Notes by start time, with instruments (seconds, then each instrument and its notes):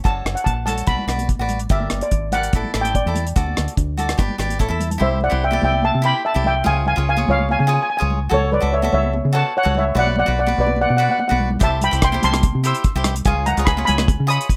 0.04 fingered electric bass F#1, cavaquinho F#4 A4 C#5, steel pan A5, kick, closed hi-hat
0.25 fingered electric bass F#1, cross-stick, closed hi-hat
0.35 steel pan F#5, closed hi-hat
0.44 fingered electric bass A#1, steel pan A5, kick, closed hi-hat
0.66 cavaquinho F#4 A4 C#5, steel pan A5, closed hi-hat, low conga
0.78 closed hi-hat
0.87 fingered electric bass B1, cavaquinho F#4 B4 D5, steel pan B5, kick, closed hi-hat, high conga
0.98 low conga
1.07 fingered electric bass B1, cavaquinho F#4 B4 D5, cross-stick, closed hi-hat
1.18 closed hi-hat, high conga
1.29 kick, closed hi-hat
1.39 fingered electric bass A1, cavaquinho F#4 B4 D5, high conga
1.49 closed hi-hat, low conga
1.59 closed hi-hat
1.69 fingered electric bass G1, cavaquinho G4 A#4 D5, steel pan E5, kick, closed hi-hat
1.80 high conga
1.90 fingered electric bass G1, cross-stick, closed hi-hat
2.01 steel pan D5, closed hi-hat
2.11 fingered electric bass G#1, kick, closed hi-hat
2.32 cavaquinho G4 A#4 D5, steel pan F#5, closed hi-hat, low conga
2.43 closed hi-hat
2.53 fingered electric bass A1, cavaquinho E4 A4 D5, kick, closed hi-hat, high conga
2.65 low conga
2.74 fingered electric bass A1, cavaquinho E4 A4 D5, cross-stick, closed hi-hat
2.81 steel pan G5, closed hi-hat, high conga
2.95 steel pan D5, kick, closed hi-hat
3.06 fingered electric bass E2, cavaquinho E4 A4 D5, high conga
3.15 closed hi-hat, low conga
3.27 closed hi-hat
3.36 fingered electric bass D2, cavaquinho F#4 A4 D5, kick, closed hi-hat
3.46 high conga
3.56 fingered electric bass D2, cross-stick, closed hi-hat, high conga
3.68 closed hi-hat
3.77 fingered electric bass D2, kick, closed hi-hat
3.97 cavaquinho F#4 A4 D5, closed hi-hat, low conga
4.09 cross-stick, closed hi-hat
4.18 fingered electric bass G1, cavaquinho G4 B4 D5, kick, cross-stick, closed hi-hat, high conga
4.29 low conga
4.38 fingered electric bass G#1, cavaquinho G4 B4 D5, cross-stick, closed hi-hat
4.50 closed hi-hat, high conga
4.59 fingered electric bass A1, cavaquinho E4 A4 C#5, kick, closed hi-hat, high conga
4.68 fingered electric bass E2, cavaquinho E4 A4 E5, high conga
4.80 closed hi-hat, low conga
4.90 closed hi-hat, low conga
4.98 fingered electric bass C2, cavaquinho E4 G4 C5, steel pan E5, low conga
5.02 steel pan C5
5.21 steel pan D5 F#5, low conga
5.30 fingered electric bass C2, cavaquinho E4 G4 C5
5.44 steel pan E5 G5
5.51 cavaquinho E4 G4 D5, high conga
5.62 fingered electric bass C2, steel pan E5 G5, low conga
5.72 high conga
5.82 steel pan E5 A5, high conga
5.95 fingered electric bass C3
6.02 cavaquinho E4 G4 C5, steel pan G5 B5
6.25 steel pan E5 A5
6.34 fingered electric bass C2, cavaquinho E4 G4 D5
6.44 steel pan E5 G5, low conga
6.64 fingered electric bass C#2, cavaquinho F4 G#4 C#5, steel pan F5 G#5, low conga
6.86 steel pan F5 G#5, low conga
6.96 fingered electric bass C#2, cavaquinho F4 G#4 C#5
7.09 steel pan F5 G#5
7.17 cavaquinho F4 G#4 C#5, high conga
7.28 fingered electric bass C#2, steel pan C#5 F5, low conga
7.39 high conga
7.49 steel pan F5 G#5, high conga
7.59 fingered electric bass C#3, steel pan G#5
7.67 cavaquinho F4 G#4 C#5, steel pan G#5
7.74 steel pan G#5
7.82 steel pan G#5
7.90 steel pan G#5
7.97 cavaquinho F4 G#4 C#5, steel pan G#5
8.02 fingered electric bass C#2
8.10 low conga
8.29 fingered electric bass C#2, cavaquinho F#4 A4 C#5, steel pan A4, low conga
8.34 steel pan C#5
8.51 steel pan B4 D5, low conga
8.61 fingered electric bass C#2, cavaquinho F#4 A4 E5
8.73 steel pan C#5 E5
8.82 cavaquinho F#4 A4 E5, high conga
8.92 fingered electric bass C#2, steel pan C#5 E5, low conga
9.03 high conga
9.13 high conga
9.25 fingered electric bass C#3
9.33 cavaquinho F#4 A4 C#5, steel pan F#5 A5
9.57 steel pan C#5 F#5
9.63 fingered electric bass C#2, cavaquinho F#4 A4 C#5
9.75 steel pan C#5 E5, low conga
9.95 fingered electric bass B1, cavaquinho F#4 B4 D5, steel pan D5, low conga
9.99 steel pan F#5
10.07 high conga
10.16 steel pan D5 F#5, low conga
10.26 fingered electric bass B1, cavaquinho F#4 B4 D5
10.39 steel pan D5 F#5
10.46 cavaquinho F#4 B4 D5, high conga
10.58 fingered electric bass B1, steel pan B4 D5
10.67 high conga
10.76 high conga
10.81 steel pan D5 F#5
10.89 fingered electric bass B2, steel pan F#5
10.97 cavaquinho F#4 B4 D5, steel pan F#5
11.03 steel pan F#5
11.09 steel pan F#5, high conga
11.19 steel pan F#5, high conga
11.28 fingered electric bass B1, cavaquinho F#4 B4 D5, steel pan F#5, high conga
11.40 low conga
11.50 low conga
11.59 fingered electric bass C2, cavaquinho E4 G4 C5, steel pan E5, kick, closed hi-hat, low conga
11.64 steel pan A5
11.81 steel pan G5 B5, closed hi-hat, low conga
11.91 fingered electric bass C2, cavaquinho E4 G4 C5, closed hi-hat
12.02 steel pan G5 C6, kick, cross-stick, closed hi-hat
12.12 cavaquinho E4 G4 C5, high conga
12.22 fingered electric bass C2, steel pan A5 C6, closed hi-hat, low conga
12.33 cross-stick, closed hi-hat, high conga
12.42 kick, closed hi-hat, high conga
12.55 fingered electric bass C3
12.64 cavaquinho E4 G4 C5, steel pan C6 E6, closed hi-hat
12.75 closed hi-hat
12.84 kick, closed hi-hat
12.95 fingered electric bass C2, cavaquinho E4 G4 C5
13.04 cross-stick, closed hi-hat, low conga
13.16 closed hi-hat
13.25 fingered electric bass C#2, cavaquinho F4 G#4 C#5, steel pan F5 G#5, kick, closed hi-hat, low conga
13.46 steel pan F#5 A#5, closed hi-hat, low conga
13.57 fingered electric bass C#2, cavaquinho F4 G#4 C#5, closed hi-hat
13.65 steel pan G#5 B5, kick, cross-stick, closed hi-hat
13.77 cavaquinho F4 G#4 C#5, high conga
13.85 fingered electric bass C#2, steel pan G#5 B5, closed hi-hat, low conga
13.98 cross-stick, closed hi-hat, high conga
14.08 kick, closed hi-hat, high conga
14.20 fingered electric bass C#3
14.27 cavaquinho F4 G#4 C#5, steel pan B5 D#6, closed hi-hat
14.41 closed hi-hat
14.49 kick, closed hi-hat